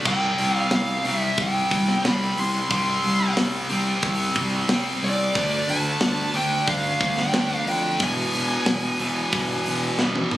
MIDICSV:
0, 0, Header, 1, 5, 480
1, 0, Start_track
1, 0, Tempo, 663717
1, 35, Time_signature, 4, 2, 24, 8
1, 7500, End_track
2, 0, Start_track
2, 0, Title_t, "Lead electric guitar"
2, 0, Program_c, 0, 29
2, 48, Note_on_c, 0, 79, 81
2, 417, Note_off_c, 0, 79, 0
2, 417, Note_on_c, 0, 77, 81
2, 535, Note_off_c, 0, 77, 0
2, 543, Note_on_c, 0, 77, 87
2, 772, Note_off_c, 0, 77, 0
2, 775, Note_on_c, 0, 76, 78
2, 1011, Note_off_c, 0, 76, 0
2, 1025, Note_on_c, 0, 79, 92
2, 1460, Note_off_c, 0, 79, 0
2, 1503, Note_on_c, 0, 83, 97
2, 1732, Note_off_c, 0, 83, 0
2, 1735, Note_on_c, 0, 84, 101
2, 1962, Note_off_c, 0, 84, 0
2, 1970, Note_on_c, 0, 84, 102
2, 2412, Note_off_c, 0, 84, 0
2, 3648, Note_on_c, 0, 74, 88
2, 4123, Note_on_c, 0, 81, 107
2, 4134, Note_off_c, 0, 74, 0
2, 4599, Note_off_c, 0, 81, 0
2, 4602, Note_on_c, 0, 79, 105
2, 4820, Note_off_c, 0, 79, 0
2, 4840, Note_on_c, 0, 77, 101
2, 5206, Note_off_c, 0, 77, 0
2, 5206, Note_on_c, 0, 79, 87
2, 5534, Note_off_c, 0, 79, 0
2, 5561, Note_on_c, 0, 79, 94
2, 5803, Note_off_c, 0, 79, 0
2, 5813, Note_on_c, 0, 80, 82
2, 7213, Note_off_c, 0, 80, 0
2, 7500, End_track
3, 0, Start_track
3, 0, Title_t, "Distorted electric guitar"
3, 0, Program_c, 1, 30
3, 39, Note_on_c, 1, 48, 98
3, 47, Note_on_c, 1, 55, 91
3, 57, Note_on_c, 1, 60, 85
3, 756, Note_off_c, 1, 60, 0
3, 759, Note_on_c, 1, 60, 93
3, 767, Note_off_c, 1, 55, 0
3, 770, Note_on_c, 1, 55, 95
3, 773, Note_off_c, 1, 48, 0
3, 776, Note_on_c, 1, 48, 67
3, 1461, Note_off_c, 1, 60, 0
3, 1466, Note_off_c, 1, 48, 0
3, 1467, Note_off_c, 1, 55, 0
3, 1475, Note_on_c, 1, 48, 91
3, 1486, Note_on_c, 1, 55, 98
3, 1492, Note_on_c, 1, 60, 93
3, 1939, Note_off_c, 1, 48, 0
3, 1944, Note_off_c, 1, 55, 0
3, 1947, Note_off_c, 1, 60, 0
3, 1951, Note_on_c, 1, 48, 91
3, 1962, Note_on_c, 1, 55, 93
3, 1967, Note_on_c, 1, 60, 99
3, 2657, Note_off_c, 1, 48, 0
3, 2661, Note_off_c, 1, 60, 0
3, 2662, Note_off_c, 1, 55, 0
3, 2670, Note_on_c, 1, 60, 99
3, 2681, Note_on_c, 1, 55, 83
3, 2686, Note_on_c, 1, 48, 71
3, 3376, Note_off_c, 1, 60, 0
3, 3381, Note_off_c, 1, 48, 0
3, 3382, Note_off_c, 1, 55, 0
3, 3389, Note_on_c, 1, 48, 74
3, 3397, Note_on_c, 1, 55, 83
3, 3406, Note_on_c, 1, 60, 91
3, 3856, Note_off_c, 1, 48, 0
3, 3860, Note_off_c, 1, 55, 0
3, 3864, Note_off_c, 1, 60, 0
3, 3868, Note_on_c, 1, 50, 80
3, 3878, Note_on_c, 1, 57, 106
3, 3883, Note_on_c, 1, 62, 105
3, 4575, Note_off_c, 1, 50, 0
3, 4577, Note_off_c, 1, 62, 0
3, 4580, Note_off_c, 1, 57, 0
3, 4586, Note_on_c, 1, 62, 95
3, 4595, Note_on_c, 1, 57, 86
3, 4604, Note_on_c, 1, 50, 80
3, 5294, Note_off_c, 1, 50, 0
3, 5294, Note_off_c, 1, 62, 0
3, 5299, Note_off_c, 1, 57, 0
3, 5303, Note_on_c, 1, 50, 80
3, 5311, Note_on_c, 1, 57, 94
3, 5318, Note_on_c, 1, 62, 88
3, 5773, Note_off_c, 1, 50, 0
3, 5777, Note_off_c, 1, 57, 0
3, 5780, Note_off_c, 1, 62, 0
3, 5788, Note_on_c, 1, 40, 88
3, 5797, Note_on_c, 1, 47, 90
3, 5803, Note_on_c, 1, 52, 96
3, 6495, Note_off_c, 1, 40, 0
3, 6497, Note_off_c, 1, 52, 0
3, 6500, Note_off_c, 1, 47, 0
3, 6506, Note_on_c, 1, 52, 92
3, 6516, Note_on_c, 1, 47, 86
3, 6523, Note_on_c, 1, 40, 78
3, 7214, Note_off_c, 1, 40, 0
3, 7214, Note_off_c, 1, 52, 0
3, 7219, Note_off_c, 1, 47, 0
3, 7223, Note_on_c, 1, 40, 84
3, 7234, Note_on_c, 1, 47, 85
3, 7242, Note_on_c, 1, 52, 88
3, 7500, Note_off_c, 1, 40, 0
3, 7500, Note_off_c, 1, 47, 0
3, 7500, Note_off_c, 1, 52, 0
3, 7500, End_track
4, 0, Start_track
4, 0, Title_t, "Picked electric bass"
4, 0, Program_c, 2, 34
4, 39, Note_on_c, 2, 36, 97
4, 201, Note_off_c, 2, 36, 0
4, 281, Note_on_c, 2, 36, 81
4, 442, Note_off_c, 2, 36, 0
4, 515, Note_on_c, 2, 36, 93
4, 678, Note_off_c, 2, 36, 0
4, 760, Note_on_c, 2, 36, 92
4, 921, Note_off_c, 2, 36, 0
4, 995, Note_on_c, 2, 36, 99
4, 1158, Note_off_c, 2, 36, 0
4, 1237, Note_on_c, 2, 36, 88
4, 1399, Note_off_c, 2, 36, 0
4, 1477, Note_on_c, 2, 36, 94
4, 1639, Note_off_c, 2, 36, 0
4, 1715, Note_on_c, 2, 36, 90
4, 1877, Note_off_c, 2, 36, 0
4, 1957, Note_on_c, 2, 36, 94
4, 2119, Note_off_c, 2, 36, 0
4, 2199, Note_on_c, 2, 36, 77
4, 2360, Note_off_c, 2, 36, 0
4, 2438, Note_on_c, 2, 36, 92
4, 2599, Note_off_c, 2, 36, 0
4, 2677, Note_on_c, 2, 36, 95
4, 2839, Note_off_c, 2, 36, 0
4, 2911, Note_on_c, 2, 36, 98
4, 3075, Note_off_c, 2, 36, 0
4, 3153, Note_on_c, 2, 36, 83
4, 3316, Note_off_c, 2, 36, 0
4, 3392, Note_on_c, 2, 36, 101
4, 3555, Note_off_c, 2, 36, 0
4, 3634, Note_on_c, 2, 36, 93
4, 3796, Note_off_c, 2, 36, 0
4, 3871, Note_on_c, 2, 38, 87
4, 4035, Note_off_c, 2, 38, 0
4, 4107, Note_on_c, 2, 38, 75
4, 4272, Note_off_c, 2, 38, 0
4, 4350, Note_on_c, 2, 38, 102
4, 4514, Note_off_c, 2, 38, 0
4, 4586, Note_on_c, 2, 38, 93
4, 4751, Note_off_c, 2, 38, 0
4, 4827, Note_on_c, 2, 38, 91
4, 4992, Note_off_c, 2, 38, 0
4, 5066, Note_on_c, 2, 38, 88
4, 5231, Note_off_c, 2, 38, 0
4, 5299, Note_on_c, 2, 38, 98
4, 5467, Note_off_c, 2, 38, 0
4, 5541, Note_on_c, 2, 41, 100
4, 5708, Note_off_c, 2, 41, 0
4, 5788, Note_on_c, 2, 28, 104
4, 5952, Note_off_c, 2, 28, 0
4, 6025, Note_on_c, 2, 28, 75
4, 6191, Note_off_c, 2, 28, 0
4, 6264, Note_on_c, 2, 28, 84
4, 6430, Note_off_c, 2, 28, 0
4, 6508, Note_on_c, 2, 28, 85
4, 6673, Note_off_c, 2, 28, 0
4, 6747, Note_on_c, 2, 28, 97
4, 6912, Note_off_c, 2, 28, 0
4, 6988, Note_on_c, 2, 28, 85
4, 7152, Note_off_c, 2, 28, 0
4, 7227, Note_on_c, 2, 28, 102
4, 7392, Note_off_c, 2, 28, 0
4, 7471, Note_on_c, 2, 32, 91
4, 7500, Note_off_c, 2, 32, 0
4, 7500, End_track
5, 0, Start_track
5, 0, Title_t, "Drums"
5, 38, Note_on_c, 9, 49, 99
5, 40, Note_on_c, 9, 36, 124
5, 110, Note_off_c, 9, 49, 0
5, 112, Note_off_c, 9, 36, 0
5, 277, Note_on_c, 9, 46, 64
5, 349, Note_off_c, 9, 46, 0
5, 513, Note_on_c, 9, 46, 88
5, 514, Note_on_c, 9, 38, 115
5, 586, Note_off_c, 9, 46, 0
5, 587, Note_off_c, 9, 38, 0
5, 756, Note_on_c, 9, 46, 62
5, 828, Note_off_c, 9, 46, 0
5, 995, Note_on_c, 9, 46, 86
5, 997, Note_on_c, 9, 36, 121
5, 1067, Note_off_c, 9, 46, 0
5, 1070, Note_off_c, 9, 36, 0
5, 1239, Note_on_c, 9, 36, 84
5, 1242, Note_on_c, 9, 46, 69
5, 1311, Note_off_c, 9, 36, 0
5, 1314, Note_off_c, 9, 46, 0
5, 1362, Note_on_c, 9, 38, 30
5, 1434, Note_off_c, 9, 38, 0
5, 1482, Note_on_c, 9, 46, 87
5, 1483, Note_on_c, 9, 38, 112
5, 1554, Note_off_c, 9, 46, 0
5, 1555, Note_off_c, 9, 38, 0
5, 1718, Note_on_c, 9, 46, 64
5, 1791, Note_off_c, 9, 46, 0
5, 1956, Note_on_c, 9, 46, 88
5, 1958, Note_on_c, 9, 36, 116
5, 2029, Note_off_c, 9, 46, 0
5, 2030, Note_off_c, 9, 36, 0
5, 2194, Note_on_c, 9, 46, 62
5, 2266, Note_off_c, 9, 46, 0
5, 2436, Note_on_c, 9, 46, 91
5, 2437, Note_on_c, 9, 38, 112
5, 2508, Note_off_c, 9, 46, 0
5, 2509, Note_off_c, 9, 38, 0
5, 2673, Note_on_c, 9, 46, 68
5, 2745, Note_off_c, 9, 46, 0
5, 2911, Note_on_c, 9, 46, 89
5, 2914, Note_on_c, 9, 36, 108
5, 2983, Note_off_c, 9, 46, 0
5, 2986, Note_off_c, 9, 36, 0
5, 3149, Note_on_c, 9, 46, 66
5, 3152, Note_on_c, 9, 36, 86
5, 3222, Note_off_c, 9, 46, 0
5, 3224, Note_off_c, 9, 36, 0
5, 3392, Note_on_c, 9, 38, 125
5, 3392, Note_on_c, 9, 46, 94
5, 3464, Note_off_c, 9, 46, 0
5, 3465, Note_off_c, 9, 38, 0
5, 3635, Note_on_c, 9, 46, 74
5, 3707, Note_off_c, 9, 46, 0
5, 3872, Note_on_c, 9, 36, 119
5, 3872, Note_on_c, 9, 46, 83
5, 3944, Note_off_c, 9, 36, 0
5, 3944, Note_off_c, 9, 46, 0
5, 4114, Note_on_c, 9, 46, 66
5, 4187, Note_off_c, 9, 46, 0
5, 4345, Note_on_c, 9, 38, 112
5, 4345, Note_on_c, 9, 46, 83
5, 4417, Note_off_c, 9, 46, 0
5, 4418, Note_off_c, 9, 38, 0
5, 4584, Note_on_c, 9, 46, 62
5, 4657, Note_off_c, 9, 46, 0
5, 4828, Note_on_c, 9, 36, 112
5, 4829, Note_on_c, 9, 46, 85
5, 4900, Note_off_c, 9, 36, 0
5, 4902, Note_off_c, 9, 46, 0
5, 5067, Note_on_c, 9, 36, 82
5, 5069, Note_on_c, 9, 46, 60
5, 5140, Note_off_c, 9, 36, 0
5, 5142, Note_off_c, 9, 46, 0
5, 5189, Note_on_c, 9, 38, 34
5, 5262, Note_off_c, 9, 38, 0
5, 5306, Note_on_c, 9, 38, 126
5, 5306, Note_on_c, 9, 46, 91
5, 5378, Note_off_c, 9, 46, 0
5, 5379, Note_off_c, 9, 38, 0
5, 5549, Note_on_c, 9, 46, 61
5, 5621, Note_off_c, 9, 46, 0
5, 5783, Note_on_c, 9, 46, 83
5, 5786, Note_on_c, 9, 36, 108
5, 5855, Note_off_c, 9, 46, 0
5, 5859, Note_off_c, 9, 36, 0
5, 6027, Note_on_c, 9, 46, 67
5, 6099, Note_off_c, 9, 46, 0
5, 6264, Note_on_c, 9, 46, 90
5, 6265, Note_on_c, 9, 38, 112
5, 6337, Note_off_c, 9, 38, 0
5, 6337, Note_off_c, 9, 46, 0
5, 6504, Note_on_c, 9, 46, 64
5, 6576, Note_off_c, 9, 46, 0
5, 6744, Note_on_c, 9, 46, 90
5, 6746, Note_on_c, 9, 36, 110
5, 6816, Note_off_c, 9, 46, 0
5, 6818, Note_off_c, 9, 36, 0
5, 6985, Note_on_c, 9, 46, 63
5, 7057, Note_off_c, 9, 46, 0
5, 7223, Note_on_c, 9, 38, 72
5, 7295, Note_off_c, 9, 38, 0
5, 7345, Note_on_c, 9, 48, 62
5, 7417, Note_off_c, 9, 48, 0
5, 7459, Note_on_c, 9, 45, 94
5, 7500, Note_off_c, 9, 45, 0
5, 7500, End_track
0, 0, End_of_file